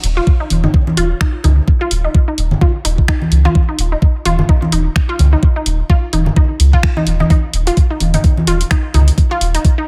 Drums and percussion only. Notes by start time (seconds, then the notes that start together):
0.04 open hi-hat
0.27 kick
0.50 open hi-hat, high conga
0.64 low conga
0.74 kick
0.87 high conga
0.97 open hi-hat
1.21 finger snap, kick
1.44 open hi-hat, low conga
1.68 kick
1.91 open hi-hat
2.15 kick
2.38 open hi-hat
2.51 low conga
2.61 kick
2.85 open hi-hat
2.98 kick
3.08 finger snap, kick
3.22 high conga
3.32 open hi-hat
3.45 high conga
3.55 kick
3.79 open hi-hat
4.02 kick
4.25 open hi-hat, high conga
4.39 low conga
4.49 kick
4.62 high conga
4.72 open hi-hat
4.96 finger snap, kick
5.19 open hi-hat, low conga
5.43 kick
5.66 open hi-hat
5.90 kick
6.13 open hi-hat, high conga
6.26 low conga
6.36 kick
6.60 open hi-hat
6.73 kick
6.83 finger snap, kick
6.97 high conga
7.07 open hi-hat
7.20 high conga
7.30 kick, closed hi-hat
7.53 open hi-hat
7.67 closed hi-hat
7.77 kick, closed hi-hat
8.00 open hi-hat, high conga
8.14 closed hi-hat, low conga
8.24 kick, closed hi-hat
8.37 high conga
8.47 open hi-hat
8.61 closed hi-hat
8.71 finger snap, kick, closed hi-hat
8.94 open hi-hat, low conga
9.08 closed hi-hat
9.18 kick, closed hi-hat
9.41 open hi-hat
9.55 closed hi-hat
9.65 kick, closed hi-hat